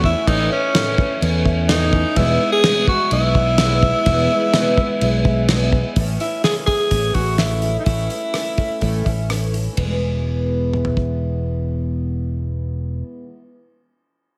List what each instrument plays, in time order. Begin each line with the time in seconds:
Already playing: fingered electric bass E2
0.04 twelve-string acoustic guitar A3 C#4 E4, tenor saxophone E4, kick
0.27 fingered electric bass A1, twelve-string acoustic guitar A2 E3 A3 C#4 E4, tenor saxophone D#4, kick, crash
0.50 twelve-string acoustic guitar A3 C#4 E4, tenor saxophone C#4
0.75 twelve-string acoustic guitar A2 E3 A3 C#4 E4, snare, crash
0.98 twelve-string acoustic guitar A3 C#4 E4, kick
1.21 fingered electric bass E2, twelve-string acoustic guitar E3 A3 C#4 E4, crash
1.45 twelve-string acoustic guitar A3 C#4 E4, kick
1.68 twelve-string acoustic guitar A2 E3 A3 C#4 E4, tenor saxophone D#4, snare, crash
1.92 twelve-string acoustic guitar A3 C#4 E4, kick
2.16 fingered electric bass E1, twelve-string acoustic guitar E2 B2 E3 G#3 B3 E4, tenor saxophone E4, kick, crash
2.40 twelve-string acoustic guitar E3 G#3 B3 E4
2.52 tenor saxophone G#4
2.64 twelve-string acoustic guitar E2 B2 E3 G#3 B3, snare, crash
2.68 twelve-string acoustic guitar E4
2.88 twelve-string acoustic guitar E3 G#3 B3 E4, tenor saxophone F#4, kick
3.11 fingered electric bass B1, twelve-string acoustic guitar E3 G#3 B3 E4, tenor saxophone E4, crash
3.35 twelve-string acoustic guitar E3 G#3 B3 E4, kick
3.58 twelve-string acoustic guitar E2 B2 E3 G#3 B3 E4, snare, crash
3.82 twelve-string acoustic guitar E3 G#3 B3 E4, kick
4.06 fingered electric bass E1, twelve-string acoustic guitar E2 B2 E3 G#3 B3 E4, kick, crash
4.31 twelve-string acoustic guitar E3 G#3 B3 E4
4.53 twelve-string acoustic guitar E2 B2 E3 G#3 B3 E4, snare, crash
4.77 twelve-string acoustic guitar E3 G#3 B3 E4, kick
5.01 fingered electric bass B1, twelve-string acoustic guitar E3 G#3 B3 E4, crash
5.25 twelve-string acoustic guitar E3 G#3 B3 E4, kick
5.49 twelve-string acoustic guitar E2 B2 E3 G#3 B3 E4, snare, crash
5.73 twelve-string acoustic guitar E3 G#3 B3 E4, kick
5.96 fingered electric bass A1, twelve-string acoustic guitar A2 E3 A3 C#4 E4, kick, open hi-hat
6.20 twelve-string acoustic guitar A3 C#4 E4, tenor saxophone E4, open hi-hat
6.44 twelve-string acoustic guitar E3 A3 C#4 E4, tenor saxophone G#4, snare, open hi-hat
6.66 twelve-string acoustic guitar C#4 E4, tenor saxophone G#4, kick, open hi-hat
6.71 twelve-string acoustic guitar A3
6.91 fingered electric bass A1, twelve-string acoustic guitar A2 E3 A3 C#4 E4, kick, open hi-hat
7.14 fingered electric bass A1, twelve-string acoustic guitar C#4 E4, tenor saxophone F#4, kick, open hi-hat
7.19 twelve-string acoustic guitar A3
7.38 twelve-string acoustic guitar E3 A3 C#4, tenor saxophone E4, snare, open hi-hat
7.43 twelve-string acoustic guitar E4
7.62 twelve-string acoustic guitar A3 C#4 E4, open hi-hat
7.80 tenor saxophone D#4
7.85 fingered electric bass A1, twelve-string acoustic guitar A2 E3 A3 C#4 E4, tenor saxophone E4, kick, open hi-hat
8.10 twelve-string acoustic guitar A3 C#4 E4, open hi-hat
8.33 twelve-string acoustic guitar E3 A3 C#4 E4, cross-stick, open hi-hat
8.56 twelve-string acoustic guitar A3 C#4 E4, kick, open hi-hat
8.81 fingered electric bass A1, twelve-string acoustic guitar A2 E3 A3 C#4 E4, kick, open hi-hat
9.04 fingered electric bass A1, twelve-string acoustic guitar A3 C#4 E4, kick, open hi-hat
9.29 twelve-string acoustic guitar E3 A3 C#4 E4, cross-stick, open hi-hat
9.53 twelve-string acoustic guitar A3 C#4 E4, open hi-hat
9.73 twelve-string acoustic guitar E2
9.77 fingered electric bass E1, twelve-string acoustic guitar B2, kick, ride
9.81 twelve-string acoustic guitar E3 G#3
9.88 twelve-string acoustic guitar B3 E4
10.73 mid tom
10.85 floor tom
10.97 kick